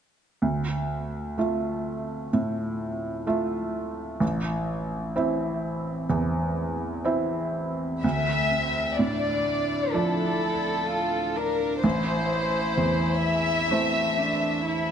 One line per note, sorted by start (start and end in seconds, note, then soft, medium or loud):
0.42 1.36 D2 soft
1.38 2.29 A3 soft
1.38 2.29 F4 soft
1.38 2.30 E5 soft
2.33 3.24 A2 soft
3.27 4.17 A3 soft
3.27 4.17 F4 soft
3.27 4.18 E5 soft
4.20 5.13 A1 soft
5.16 6.06 C4 soft
5.16 6.06 E4 soft
5.16 6.06 E5 soft
6.10 7.03 E2 soft
7.05 7.99 C4 soft
7.05 7.99 E4 soft
7.05 8.00 E5 soft
8.02 11.80 D2 soft
8.02 8.53 A3 soft
8.02 8.95 E5 soft
8.51 9.01 C4 soft
8.99 10.51 A2 soft
8.99 9.96 D4 soft
8.99 9.95 D5 soft
9.94 11.80 F3 soft
9.94 11.80 D4 soft
9.94 10.88 E4 soft
9.94 11.37 A4 soft
9.94 11.80 D5 soft
10.88 11.38 F4 soft
11.36 11.85 D4 soft
11.36 11.84 A#4 soft
11.83 14.91 A1 soft
11.83 13.74 E4 soft
11.83 13.21 C5 soft
12.78 14.27 E2 soft
13.24 14.91 E5 medium
13.71 14.91 A3 soft
13.71 14.20 C4 soft
13.71 14.91 E4 soft
13.71 14.91 C5 soft
14.18 14.65 D4 soft
14.65 14.91 E4 soft